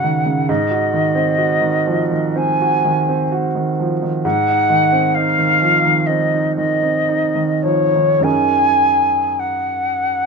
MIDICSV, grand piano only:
0, 0, Header, 1, 2, 480
1, 0, Start_track
1, 0, Tempo, 902256
1, 262, Time_signature, 4, 2, 24, 8
1, 741, Tempo, 964630
1, 1701, Tempo, 920245
1, 3141, Tempo, 993377
1, 3621, Tempo, 1153846
1, 4946, End_track
2, 0, Start_track
2, 0, Title_t, "Grand piano"
2, 0, Program_c, 0, 0
2, 0, Control_c, 0, 64, 127
2, 0, Note_on_c, 0, 49, 41
2, 0, Note_on_c, 0, 51, 36
2, 0, Note_on_c, 0, 61, 45
2, 0, Note_on_c, 0, 66, 40
2, 19, Note_off_c, 0, 51, 0
2, 19, Note_on_c, 0, 51, 39
2, 93, Note_off_c, 0, 49, 0
2, 138, Note_on_c, 0, 49, 42
2, 141, Note_off_c, 0, 51, 0
2, 260, Note_off_c, 0, 49, 0
2, 260, Note_on_c, 0, 44, 57
2, 269, Control_c, 0, 64, 0
2, 272, Note_off_c, 0, 61, 0
2, 274, Note_off_c, 0, 66, 0
2, 346, Control_c, 0, 64, 127
2, 377, Note_on_c, 0, 66, 41
2, 498, Note_on_c, 0, 51, 43
2, 569, Note_off_c, 0, 66, 0
2, 612, Note_on_c, 0, 60, 44
2, 691, Note_off_c, 0, 51, 0
2, 736, Note_on_c, 0, 66, 44
2, 806, Note_off_c, 0, 60, 0
2, 851, Note_on_c, 0, 51, 41
2, 929, Note_off_c, 0, 66, 0
2, 978, Note_on_c, 0, 53, 40
2, 1054, Note_off_c, 0, 51, 0
2, 1096, Note_on_c, 0, 51, 42
2, 1105, Note_off_c, 0, 53, 0
2, 1209, Note_off_c, 0, 44, 0
2, 1221, Note_on_c, 0, 60, 41
2, 1297, Note_off_c, 0, 51, 0
2, 1349, Note_on_c, 0, 66, 46
2, 1417, Note_off_c, 0, 60, 0
2, 1465, Note_on_c, 0, 51, 43
2, 1538, Note_off_c, 0, 66, 0
2, 1585, Note_on_c, 0, 60, 45
2, 1653, Note_off_c, 0, 51, 0
2, 1700, Note_on_c, 0, 66, 45
2, 1774, Note_off_c, 0, 60, 0
2, 1820, Note_on_c, 0, 51, 40
2, 1894, Note_off_c, 0, 66, 0
2, 1949, Note_on_c, 0, 53, 37
2, 2013, Note_off_c, 0, 51, 0
2, 2065, Note_off_c, 0, 53, 0
2, 2066, Note_on_c, 0, 51, 39
2, 2184, Note_off_c, 0, 51, 0
2, 2184, Note_on_c, 0, 44, 58
2, 2191, Control_c, 0, 64, 0
2, 2286, Control_c, 0, 64, 127
2, 2305, Note_on_c, 0, 63, 43
2, 2418, Note_on_c, 0, 51, 45
2, 2494, Note_off_c, 0, 63, 0
2, 2537, Note_on_c, 0, 60, 42
2, 2610, Note_off_c, 0, 51, 0
2, 2656, Note_on_c, 0, 63, 43
2, 2728, Note_off_c, 0, 60, 0
2, 2777, Note_on_c, 0, 51, 41
2, 2848, Note_off_c, 0, 63, 0
2, 2898, Note_on_c, 0, 53, 37
2, 2969, Note_off_c, 0, 51, 0
2, 3018, Note_off_c, 0, 53, 0
2, 3018, Note_on_c, 0, 51, 40
2, 3121, Note_off_c, 0, 44, 0
2, 3146, Note_on_c, 0, 60, 40
2, 3211, Note_off_c, 0, 51, 0
2, 3261, Note_on_c, 0, 63, 41
2, 3331, Note_off_c, 0, 60, 0
2, 3380, Note_on_c, 0, 51, 39
2, 3450, Note_off_c, 0, 63, 0
2, 3501, Note_on_c, 0, 60, 38
2, 3573, Note_off_c, 0, 51, 0
2, 3624, Note_on_c, 0, 63, 38
2, 3689, Note_off_c, 0, 60, 0
2, 3736, Note_on_c, 0, 51, 36
2, 3806, Note_off_c, 0, 63, 0
2, 3857, Note_on_c, 0, 53, 34
2, 3931, Note_off_c, 0, 51, 0
2, 3981, Note_off_c, 0, 53, 0
2, 3984, Note_on_c, 0, 51, 36
2, 4088, Note_on_c, 0, 42, 45
2, 4093, Note_on_c, 0, 61, 35
2, 4098, Note_on_c, 0, 63, 34
2, 4100, Note_on_c, 0, 68, 32
2, 4105, Note_on_c, 0, 70, 33
2, 4108, Note_off_c, 0, 51, 0
2, 4116, Control_c, 0, 64, 0
2, 4197, Control_c, 0, 64, 127
2, 4946, Note_off_c, 0, 42, 0
2, 4946, Note_off_c, 0, 61, 0
2, 4946, Note_off_c, 0, 63, 0
2, 4946, Note_off_c, 0, 68, 0
2, 4946, Note_off_c, 0, 70, 0
2, 4946, End_track
0, 0, End_of_file